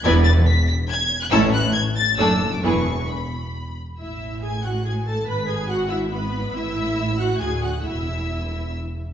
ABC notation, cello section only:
X:1
M:3/4
L:1/8
Q:1/4=139
K:A
V:1 name="Cello section" clef=bass
E,,2 z4 | A,,2 z2 F,,2 | E,,2 z4 | A,,6 |
G,,6 | A,,4 D,,2 | E,,4- E,, z |]